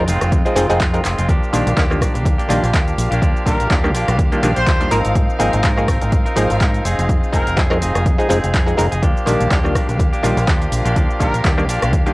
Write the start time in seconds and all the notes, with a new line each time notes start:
Already playing: F4 G5
0.07 F1 D#3 G#3 C4 F4, open hi-hat, shaker
0.21 F1 G#3 C4 F4, cross-stick, closed hi-hat, shaker
0.32 F2, kick, closed hi-hat, shaker
0.45 F3 G#3 C4 D#4 F4 G#4, closed hi-hat, shaker
0.56 F1 D#3 F3 G#3 C4 D#4 F4 G#4, open hi-hat, shaker
0.69 F1 F3 G#3 C4 D#4 G#4, open hi-hat, shaker
0.80 F2 D#3 G#3 C4 F4, kick, clap, closed hi-hat, shaker
0.94 F3 G#3 C4 D#4 A#4, closed hi-hat, shaker
1.05 F1, clap, open hi-hat, shaker
1.18 F1 G#3 C4 F4, closed hi-hat, shaker
1.28 D#2 F3 A#3 D4 F4 G4 F5, kick, closed hi-hat, shaker
1.43 shaker
1.53 A#1 D#3 F3 G3 A#3 D4 F4 G4, open hi-hat, shaker
1.66 A#1, closed hi-hat, shaker
1.77 D#3 F3 G3 A#3 D4 F4 G4, kick, clap, closed hi-hat, shaker
1.90 D#3 G3 A#3 D4 F4, cross-stick, shaker
2.00 A#1 F3 A#3 D4 G4, kick, cross-stick, open hi-hat, shaker
2.14 A#1 A#3 D4 G4, closed hi-hat, shaker
2.25 D#2, kick, closed hi-hat, shaker
2.38 A#3 D4 G4, closed hi-hat, shaker
2.49 A#1 D#3 F3 G3 A#3 D4 F4 G4, open hi-hat, shaker
2.63 A#1, open hi-hat, shaker
2.73 D#2 F3 A#3 D4 G4, kick, clap, closed hi-hat, shaker
2.88 closed hi-hat, shaker
2.98 A#1, open hi-hat, shaker
3.11 A#1 A#3 D4 G4, closed hi-hat, shaker
3.22 F3 A#3 D4 G4, kick, closed hi-hat, shaker
3.37 shaker
3.46 A#1 D#3 F3 G3 A#3 D4 F4 G4 A#4, kick, open hi-hat, shaker
3.60 A#1, closed hi-hat, shaker
3.70 D#2 D#3 F3 G3 A#3 D4 G4 A#4, kick, clap, closed hi-hat, shaker
3.84 D#3 G3 A#3 D4 G4, cross-stick, shaker
3.94 A#1 F3 A#3 D4 G4, open hi-hat, shaker
4.08 A#1 A#3 D4 G4, cross-stick, closed hi-hat, shaker
4.19 D#2, kick, closed hi-hat, shaker
4.32 D#3 G3 A#3 D4 F4 G4, closed hi-hat, shaker
4.42 A#1 D#3 F3 G3 A#3 D4 F4 G4, open hi-hat, shaker
4.56 A#1 C5, closed hi-hat, shaker
4.67 F3 A#3 D4 G4, kick, clap, closed hi-hat, shaker
4.80 D#3 G3 A#3 D4 F4, closed hi-hat, shaker
4.91 G#1 F3 A#3 C4 D#4 A#4, open hi-hat, shaker
5.05 G#1, closed hi-hat, shaker
5.15 G#2, kick, closed hi-hat, shaker
5.30 shaker
5.39 G#1 F3 A#3 C4 D#4 G#4 A#4, open hi-hat, shaker
5.53 G#1, closed hi-hat, shaker
5.63 G#2 F3 A#3 C4 D#4 G#4 A#4, kick, clap, closed hi-hat, shaker
5.77 F3 A#3 C4 D#4 G#4, cross-stick, shaker
5.88 G#1 F3 C4 D#4 A#4, kick, cross-stick, open hi-hat, shaker
6.01 G#1 C4 D#4 A#4, closed hi-hat, shaker
6.12 G#2, kick, closed hi-hat, shaker
6.25 C4 D#4 A#4, closed hi-hat, shaker
6.36 G#1 F3 A#3 C4 D#4 G#4 A#4, open hi-hat, shaker
6.50 G#1, open hi-hat, shaker
6.60 G#2 F3 C4 D#4 A#4, kick, clap, closed hi-hat, shaker
6.74 closed hi-hat, shaker
6.85 F1 C4 D#4 G#4, open hi-hat, shaker
6.98 F1, closed hi-hat, shaker
7.09 F2, kick, closed hi-hat, shaker
7.24 shaker
7.33 F1 F3 G#3 C4 D#4 G#4 A#4, kick, open hi-hat, shaker
7.47 F1, closed hi-hat, shaker
7.57 F2 F3 G#3 C4 D#4 G#4 C5, kick, clap, closed hi-hat, shaker
7.70 F3 G#3 C4 D#4 A#4, cross-stick, shaker
7.81 F1 C4 D#4 G#4, open hi-hat, shaker
7.95 F1 D#4 G#4, cross-stick, closed hi-hat, shaker
8.06 F2, kick, closed hi-hat, shaker
8.18 F3 G#3 C4 D#4 G#4, closed hi-hat, shaker
8.29 F1 F3 G#3 C4 D#4 G#4, open hi-hat, shaker
8.44 F1, closed hi-hat, shaker
8.54 F2 C4 D#4 G#4, kick, clap, closed hi-hat, shaker
8.66 F3 G#3 C4 D#4 G#4, closed hi-hat, shaker
8.77 F1 F3 G#3 C4 D#4 A#4, open hi-hat, shaker
8.92 F1 D#4 G#4, closed hi-hat, shaker
9.02 D#2 F3 A#3 D4 F4 G4 F5, kick, closed hi-hat, shaker
9.17 shaker
9.26 A#1 D#3 F3 G3 A#3 D4 F4 G4, open hi-hat, shaker
9.40 A#1, closed hi-hat, shaker
9.50 D#2 D#3 F3 G3 A#3 D4 F4 G4, kick, clap, closed hi-hat, shaker
9.63 D#3 G3 A#3 D4 F4, cross-stick, shaker
9.75 A#1 F3 A#3 D4 G4, kick, cross-stick, open hi-hat, shaker
9.88 A#1 A#3 D4 G4, closed hi-hat, shaker
9.99 D#2, kick, closed hi-hat, shaker
10.13 A#3 D4 G4, closed hi-hat, shaker
10.23 A#1 D#3 F3 G3 A#3 D4 F4 G4, open hi-hat, shaker
10.37 A#1, open hi-hat, shaker
10.47 D#2 F3 A#3 D4 G4, kick, clap, closed hi-hat, shaker
10.62 closed hi-hat, shaker
10.72 A#1, open hi-hat, shaker
10.85 A#1 A#3 D4 G4, closed hi-hat, shaker
10.96 F3 A#3 D4 G4, kick, closed hi-hat, shaker
11.10 shaker
11.20 A#1 D#3 F3 G3 A#3 D4 F4 G4 A#4, kick, open hi-hat, shaker
11.34 A#1, closed hi-hat, shaker
11.44 D#2 D#3 F3 G3 A#3 D4 G4 A#4, kick, clap, closed hi-hat, shaker
11.57 D#3 G3 A#3 D4 G4, cross-stick, shaker
11.68 A#1 F3 A#3 D4 G4, open hi-hat, shaker
11.82 A#1 A#3 D4 G4, cross-stick, closed hi-hat, shaker
11.93 D#2, kick, closed hi-hat, shaker
12.06 D#3 G3 A#3 D4 F4 G4, closed hi-hat, shaker